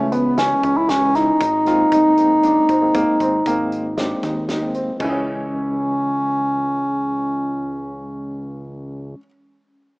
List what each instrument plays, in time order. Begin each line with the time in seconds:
Already playing: analog synth bass C#2, tine electric piano E3 G#3 C#4, bass clarinet A3
0.12 grand piano B3, bass clarinet B3, closed hi-hat
0.37 tine electric piano E3 G#3 C#4, grand piano C#4, bass clarinet C#4, snare, closed hi-hat
0.63 analog synth bass C#2, grand piano C#4, kick, closed hi-hat
0.77 bass clarinet E4
0.89 bass clarinet C#4, snare, closed hi-hat
1.01 tine electric piano E3 G#3 C#4
1.15 bass clarinet D#4, grand piano E4, snare, closed hi-hat
1.40 analog synth bass G#1, grand piano D#4, kick, closed hi-hat
1.65 tine electric piano G#3 A#3 C4, grand piano F4, snare, closed hi-hat
1.92 analog synth bass F1, grand piano D#4, kick, closed hi-hat
2.17 tine electric piano G#3 A#3 C4, closed hi-hat
2.43 grand piano D4, closed hi-hat
2.69 analog synth bass G#1, grand piano C4, kick, closed hi-hat
2.81 tine electric piano G#3 A#3 C4
2.94 analog synth bass G#1, grand piano A#3, kick, closed hi-hat
3.20 analog synth bass G#1, grand piano C4, kick, closed hi-hat
3.45 analog synth bass G#1, tine electric piano G#3 A#3 C4, grand piano A#3, kick, closed hi-hat
3.72 closed hi-hat
3.97 tine electric piano G#3 A#3 C4, grand piano D4, snare, closed hi-hat
4.23 analog synth bass D#2, grand piano D#4, kick, snare, closed hi-hat
4.49 grand piano D#4, snare, closed hi-hat
4.61 tine electric piano G#3 A#3 C4
4.74 grand piano C4, closed hi-hat
4.96 tine electric piano E3 G#3
5.00 analog synth bass C#2, grand piano C#4, bass clarinet C#4, tine electric piano C#4, kick, floor tom, china
5.04 grand piano E4
5.08 grand piano G#4
5.13 grand piano C#5